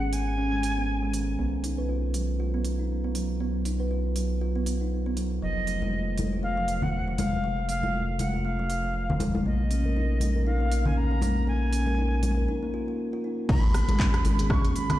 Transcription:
Already playing: analog synth bass G#1, flute F#5
0.12 kalimba D#3, flute G#5, open hi-hat
0.38 kalimba C#4
0.52 kalimba G#3
0.63 kalimba G#3, open hi-hat
0.77 kalimba B3
1.03 kalimba G#3
1.14 kalimba D#3, open hi-hat
1.39 analog synth bass B1, kalimba B3
1.64 kalimba D#4, open hi-hat
1.78 kalimba B4
1.89 kalimba F4
2.14 kalimba F#3, open hi-hat
2.40 kalimba F4
2.54 kalimba B3
2.65 kalimba B3, open hi-hat
2.79 kalimba D#4
3.04 kalimba B3
3.15 kalimba F#3, open hi-hat
3.40 kalimba B3
3.65 kalimba D#4, open hi-hat
3.80 kalimba B4
3.91 kalimba F4
4.16 kalimba F#3, open hi-hat
4.41 kalimba F4
4.56 kalimba B3
4.66 kalimba B3, open hi-hat
4.81 kalimba D#4
5.06 kalimba B3
5.17 kalimba F#3, open hi-hat
5.42 analog synth bass F1, kalimba F3, flute D#5
5.67 kalimba A3, open hi-hat
5.82 kalimba F4, high conga
5.93 kalimba A3
6.18 kalimba C3, open hi-hat, high conga
6.33 kalimba F4
6.43 kalimba A3, flute F5
6.57 kalimba F3
6.68 kalimba F3, open hi-hat
6.82 kalimba A3, flute F#5, low conga
7.08 kalimba F3
7.18 kalimba C3, flute F5, open hi-hat, high conga
7.44 kalimba F3
7.69 kalimba A3, flute F5, open hi-hat
7.83 kalimba F4, high conga
7.94 kalimba A3
8.19 kalimba C3, flute F#5, open hi-hat, high conga
8.34 kalimba F4
8.45 kalimba A3, flute F5
8.59 kalimba F3
8.70 kalimba F3, open hi-hat
8.85 kalimba A3
9.10 kalimba F3, low conga
9.20 kalimba C3, open hi-hat, high conga
9.35 high conga
9.45 analog synth bass A#1, kalimba A#3, flute D#5
9.71 kalimba C#4, open hi-hat
9.84 kalimba A#4, high conga
9.97 kalimba D#4
10.20 kalimba F3, open hi-hat, high conga
10.36 kalimba A#4
10.47 kalimba D#4, flute F5
10.60 kalimba A#3
10.72 kalimba A#3, open hi-hat
10.85 kalimba C#4, flute G#5, low conga
10.97 flute A#5
11.11 kalimba A#3
11.22 kalimba F3, open hi-hat, high conga
11.47 kalimba A#3, flute G#5
11.73 kalimba C#4, open hi-hat
11.86 kalimba A#4, high conga
11.98 kalimba D#4
12.23 kalimba F3, open hi-hat, high conga
12.37 kalimba A#4
12.48 kalimba D#4
12.63 kalimba A#3
12.74 kalimba F4
12.88 kalimba F4
13.13 kalimba F4
13.24 kalimba D#4
13.49 analog synth bass G#1, kalimba G#3, flute B5, kick, mid tom, crash
13.74 kalimba B3, cross-stick, open hi-hat
13.88 analog synth bass G#1, kalimba G#4, closed hi-hat, high conga
13.99 kalimba C#4, kick, clap
14.14 cross-stick, closed hi-hat
14.25 analog synth bass G#1, kalimba D#3, open hi-hat, high conga
14.39 kalimba G#4, closed hi-hat
14.50 kalimba C#4, flute C#6, kick, cross-stick
14.64 analog synth bass G#1, kalimba G#3, closed hi-hat
14.75 kalimba G#3, flute B5, open hi-hat
14.89 kalimba B3, cross-stick, closed hi-hat, low conga

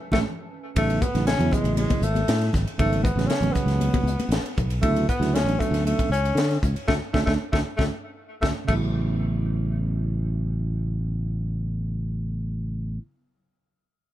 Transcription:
Already playing: analog synth pad C#4 B4 G#5 A5
0.12 fingered electric bass A1, tine electric piano G#3 A3 C#4, tenor saxophone A3, kick, snare, low conga
0.75 fingered electric bass A1, tine electric piano C#3 F#3 B3 D#4, tenor saxophone A3, kick, ride
0.90 ride
1.01 tenor saxophone B3, kick, hi-hat pedal, high conga
1.14 fingered electric bass A1, tine electric piano C#3 F#3 B3 D#4, snare, ride
1.27 tenor saxophone C#4, snare, ride
1.37 fingered electric bass E2, tine electric piano C#3 F#3 B3 E4, ride, low conga
1.52 tenor saxophone G#3, kick, hi-hat pedal, low conga
1.64 fingered electric bass A1, ride
1.77 tenor saxophone G#3, ride, high conga
1.90 kick, ride, high conga
2.02 fingered electric bass G#1, tenor saxophone A3, hi-hat pedal
2.15 ride, high conga
2.28 fingered electric bass A2, snare, ride
2.41 snare, ride
2.53 fingered electric bass G#1, kick, snare, hi-hat pedal, low conga
2.66 muted fingered electric bass stroke, ride
2.78 fingered electric bass G#1, tine electric piano C#3 F#3 B3 D#4, tenor saxophone A3, kick, ride
2.93 ride
3.03 tenor saxophone B3, kick, hi-hat pedal, high conga
3.16 fingered electric bass A1, tine electric piano C#3 F#3 B3 C#4, ride
3.20 snare
3.27 tenor saxophone C#4, snare, ride
3.41 fingered electric bass A1, tine electric piano C#3 F#3 B3 C#4, ride, low conga
3.52 tenor saxophone B3, muted fingered electric bass stroke, kick, hi-hat pedal, low conga
3.66 fingered electric bass C#2, snare, ride
3.80 ride, high conga
3.94 kick, ride, high conga
4.03 fingered electric bass C#2, hi-hat pedal
4.19 ride, high conga
4.29 fingered electric bass A1, snare, ride
4.46 ride
4.57 fingered electric bass B1, kick, hi-hat pedal, low conga
4.70 ride
4.81 fingered electric bass D2, tine electric piano C#3 F#3 B3 E4, tenor saxophone A3, kick, ride
4.96 ride
5.08 tenor saxophone B3, kick, hi-hat pedal
5.20 fingered electric bass D2, tine electric piano C#3 F#3 B3 E4, snare, ride
5.35 tenor saxophone C#4, snare, ride
5.44 fingered electric bass A1, tine electric piano F#3 B3 C#4 D4
5.48 ride
5.59 tenor saxophone A3, kick, hi-hat pedal
5.71 fingered electric bass D2, snare, ride
5.86 tenor saxophone A3, ride
5.99 kick, ride
6.09 fingered electric bass C#2, tenor saxophone C#4, hi-hat pedal
6.25 ride
6.35 fingered electric bass D3, snare, ride
6.51 snare, ride
6.63 fingered electric bass C#2, kick, hi-hat pedal
6.75 muted fingered electric bass stroke, ride
6.87 fingered electric bass D2, tenor saxophone A3, tine electric piano A3 C#4 D4, kick, snare
7.13 fingered electric bass D2, tenor saxophone A3, tine electric piano A3 C#4 D4, kick, snare
7.25 fingered electric bass D2, tenor saxophone A3, tine electric piano A3 C#4 D4, kick, snare
7.52 fingered electric bass D2, tenor saxophone A3, tine electric piano A3 C#4 D4, kick, snare
7.77 fingered electric bass D2, tenor saxophone A3, tine electric piano A3 C#4 D4, kick, snare
8.41 fingered electric bass D2, tenor saxophone A3, tine electric piano A3 C#4 D4, kick, snare
8.64 tine electric piano C#3 F#3, tenor saxophone A3
8.68 fingered electric bass A1, tine electric piano B3, kick, crash
8.73 tine electric piano E4

